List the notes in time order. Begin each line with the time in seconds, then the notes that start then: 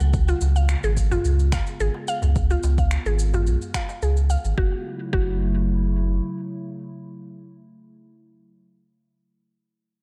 Already playing: C#3 F#4, downlifter
0.00 C#2, cabasa
0.13 G#3 B3 F4, kick, cabasa
0.28 F4, cabasa
0.41 C#2, darbuka ka, cabasa
0.56 F5, cabasa
0.69 finger snap, cabasa
0.83 G#1 G#4, cabasa
0.97 kick, cabasa
1.11 F4, darbuka ka, darbuka dum, cabasa
1.25 C#2, cabasa
1.39 darbuka ka, cabasa
1.52 F5, finger snap, kick, darbuka ka, cabasa
1.67 cabasa
1.80 G#1 G#4, cabasa
1.94 darbuka ka
2.08 F5, cabasa
2.22 C#2, darbuka dum, cabasa
2.36 kick, cabasa
2.50 F4, cabasa
2.63 C#2, darbuka ka, darbuka tek, cabasa
2.78 F5, kick, cabasa
2.91 finger snap, cabasa
3.06 G#1 G#4, cabasa
3.19 cabasa
3.34 F4, darbuka dum, cabasa
3.47 B1, cabasa
3.61 cabasa
3.74 F5, finger snap, kick, cabasa
3.89 darbuka tek, cabasa
4.02 C#2 G#4, cabasa
4.17 cabasa
4.30 F5, darbuka tek, cabasa
4.44 G#1, cabasa
4.58 F#1 C#3 F#3 A3 E4 F#4, kick
5.13 F#1 F#4, kick